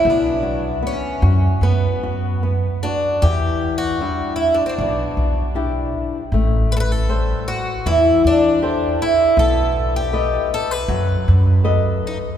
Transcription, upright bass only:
X:1
M:4/4
L:1/8
Q:1/4=78
K:Bm
V:1 name="Upright bass" clef=bass
B,,,3 F,, F,,4 | [K:Em] E,,4 B,,, B,,,3 | A,,,4 E,, E,,3 | B,,,4 F,, F,,3 |]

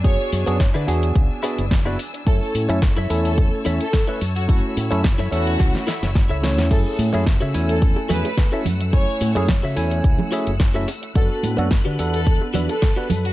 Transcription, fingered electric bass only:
X:1
M:4/4
L:1/16
Q:"Swing 16ths" 1/4=108
K:F#m
V:1 name="Fingered electric bass" clef=bass
F,, z F,, F,, F,,, D, E,,2 C,, z2 F,,,3 z2 | F,, z A,, F,, F,,, F,, E,,3 z E,, z3 F,,2- | F,, z A,, F,, F,,, F,, E,,2 C,, z2 F,,,2 C,,2 E,, | F,, z A,, F,, F,,, C, E,,3 z E,, z3 F,,2- |
F,, z A,, F,, F,,, C, E,,2 C,, z2 F,,,3 z2 | F,, z A,, F,, F,,, D, E,,3 z E,, z3 F,,2 |]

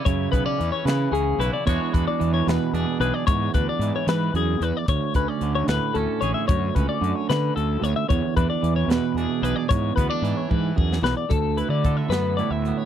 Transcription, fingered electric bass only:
X:1
M:6/8
L:1/16
Q:3/8=75
K:Dlyd
V:1 name="Fingered electric bass" clef=bass
F,,2 B,,, z E,, z C,2 C,,2 B,,, z | E,, z E,, z E,,2 E,, z E,, z B,,, z | G,,2 D,, z G,, z E,2 E,,2 E,, z | D,, z D,, z D,,2 D,, z D,, z A,,, z |
F,,2 C,, z F,, z D,2 D,,2 D,, z | E,, z E,, z E,,2 E,, z E,, z B,,, z | G,,2 D,, z G,, z E,2 E,,2 B,,, z | D,,3 D,3 F,,3 D,,2 z |]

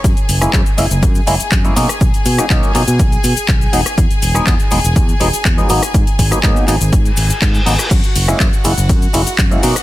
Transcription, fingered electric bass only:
X:1
M:4/4
L:1/16
Q:1/4=122
K:F#mix
V:1 name="Fingered electric bass" clef=bass
F,, z F,,, z F,, z F,,, F,,, F,, z F,,, z F,, z B,, z | B,,, z B,, z B,,, z B,, B,, B,,, z B,, z B,,, z E,,, z | E,, z E,,, z E,, z E,,, E,,, E,, z E,,, z E,, z G,,, z | G,, z G,,, z G,, z G,,, G,,, G,, z G,,, z G,, z G,,, z |
F,, z F,,, z F,, z F,,, F,,, F,, z F,,, z F,, z B,, z |]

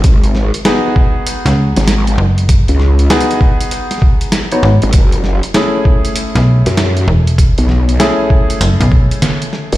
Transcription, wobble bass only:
X:1
M:4/4
L:1/16
Q:"Swing 16ths" 1/4=98
K:G#phr
V:1 name="Wobble bass" clef=bass
G,,,3 z8 G,,,3 z2 | z C,,3 z8 z3 G,,, | F,,,3 z8 F,,3 z2 | z B,,,3 z8 z3 F,,, |]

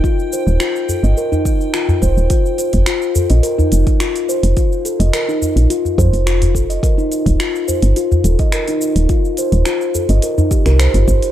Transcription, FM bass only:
X:1
M:4/4
L:1/16
Q:1/4=106
K:Fmix
V:1 name="FM bass" clef=bass
z3 E,,, z3 G,,, z6 E,,, E,,, | z3 F,,, z3 B,,, z2 F,,, z4 F,,, | z3 F,,, z3 B,,, z2 F,, F,,,4- F,,, | z3 E,,, z3 G,,, z2 E,,, z4 E,,, |
z3 E,,, z3 G,,, z3 C,,2 G,,, G,,, z |]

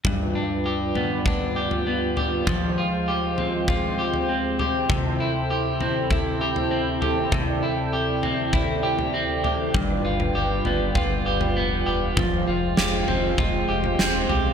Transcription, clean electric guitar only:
X:1
M:4/4
L:1/8
Q:1/4=99
K:C
V:1 name="Clean electric guitar"
G,, D G B, D G B, G | F, F G C F G C G | C, E G C E G C G | C, E G C E G C G |
G,, F G B, F G B, G | F, F G C F G C G |]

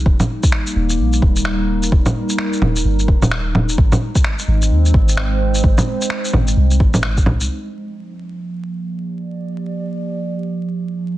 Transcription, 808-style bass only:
X:1
M:4/4
L:1/8
Q:"Swing 16ths" 1/4=129
K:Gphr
V:1 name="808-style bass" clef=bass
E,,, z2 E,,, B,,, E,,,3 | E,,, z2 E,,, G,,, z3 | A,,, z2 A,,, E,, A,,,3 | A,,, z2 A,,, C,, A,,,2 C,, |
z8 | z8 |]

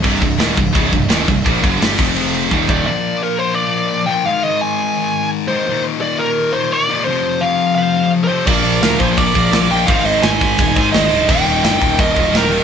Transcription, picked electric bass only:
X:1
M:4/4
L:1/8
Q:1/4=171
K:Bbmix
V:1 name="Picked electric bass" clef=bass
C,,, C,,, E,,, C,,, _D,,, C,,, E,,, C,,, | B,,, ^F,,, G,,, =F,,,3 E,,,2 | z8 | z8 |
z8 | z8 | B,,, B,,, D,, B,,, B,,, B,,, B,,,2 | A,,, A,,, A,,,2 E,,, A,, A,,, D,,, |
E,,, E,,, G,,, E,,, E,,, E,,, E,,,2 |]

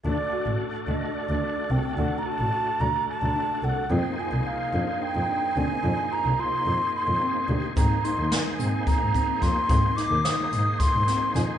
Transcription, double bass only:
X:1
M:7/8
L:1/16
Q:1/4=109
K:Dphr
V:1 name="Double bass" clef=bass
D,,2 z A,,,2 z D,,2 z D,,2 z C,,2 | D,,2 z A,,,2 z D,,2 z D,,2 z C,,2 | F,,2 z C,,2 z F,,2 z F,,2 z D,,2 | F,,2 z C,,2 z F,,2 z F,,2 z D,,2 |
_A,,2 z E,,2 z A,,2 z A,,2 z F,,2 | _A,,2 z E,,2 z A,,2 z A,,2 z F,,2 |]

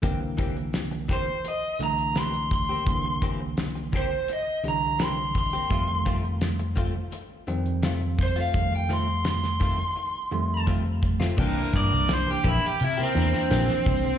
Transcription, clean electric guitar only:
X:1
M:4/4
L:1/16
Q:1/4=85
K:Cmix
V:1 name="Clean electric guitar"
[E,B,CG] z [E,B,CG] z3 [E,B,CG] z4 z [E,B,CG] z2 [B,CG] | z2 [E,B,CG] z3 [E,B,CG] z4 z [E,B,CG] z2 [B,CG] | [_E,A,CF] z [E,A,CF] z3 [E,A,CF] z4 z [E,A,CF] z2 [A,CF] | z2 [_E,A,CF] z3 [E,A,CF] z4 z [E,A,CF] z2 [A,CF] |
[E,B,CG] z4 z [E,B,CG] z2 [B,CG] [E,B,CG] z [E,B,CG] z3 |]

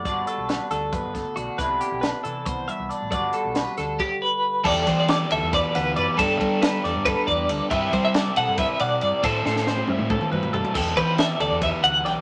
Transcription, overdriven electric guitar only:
X:1
M:7/8
L:1/8
Q:1/4=138
K:G
V:1 name="Overdriven electric guitar"
z6 z | z6 z | z6 z | [E,B,EG]6- [E,B,EG] |
[G,B,DG]6- [G,B,DG] | [G,CEG]6- [G,CEG] | [A,CEA]6- [A,CEA] | [E,B,EG]6- [E,B,EG] |]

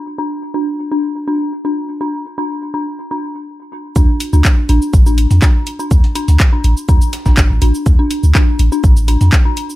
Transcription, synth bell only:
X:1
M:4/4
L:1/16
Q:1/4=123
K:Dm
V:1 name="Synth bell"
z D z2 D z2 D z2 D z2 D z2 | D z2 D z2 D z2 D z6 | D z2 D z2 D z2 D z2 D z2 D | z2 D z2 D z2 D z2 D z2 D z |
z D z2 D z2 D z2 D z2 D z2 |]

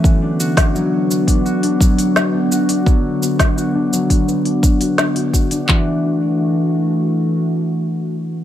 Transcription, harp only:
X:1
M:4/4
L:1/16
Q:1/4=85
K:F#m
V:1 name="Harp"
B, D F D F,2 B, D F D F,2 B, D F D | F,2 B, D F D F,2 B, D F F D F F D | E,2 z12 z2 |]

